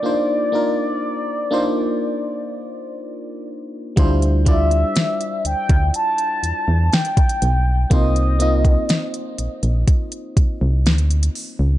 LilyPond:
<<
  \new Staff \with { instrumentName = "Soft synth lead" } { \time 4/4 \key d \phrygian \tempo 4 = 61 d''2.~ d''8 r8 | r8 e''4 g''8 a''4 g''4 | ees''4. r2 r8 | }
  \new Staff \with { instrumentName = "FM electric piano" } { \time 4/4 \key d \phrygian <bes d' ees' f' c''>8 <bes d' ees' f' bes'>8. r16 <bes d' ees' f' c''>4. r4 | <g d' e' f' c''>8 <g d' e' f' d''>4. r2 | <bes c' ees' f' c''>8 <bes c' ees' f' ees''>4. r2 | }
  \new Staff \with { instrumentName = "FM bass" } { \clef bass \time 4/4 \key d \phrygian r1 | d,4 r8 d,16 d,16 r8 e,16 e,16 r8 b,,8 | c,4 r8 bes,,16 bes,,16 r8 c,16 c,16 d,8 r16 cis,16 | }
  \new DrumStaff \with { instrumentName = "Drums" } \drummode { \time 4/4 r4 r4 r4 r4 | <hh bd>16 hh16 <hh bd>16 hh16 <hh sn>16 hh16 hh16 <hh bd>16 hh16 hh16 hh8 <hh sn>32 hh32 <hh bd>32 hh32 hh8 | <hh bd>16 hh16 hh16 <hh bd>16 <hh sn>16 hh16 hh16 hh16 <hh bd>16 hh16 <hh bd>8 <hh sn>32 hh32 hh32 hh32 hho8 | }
>>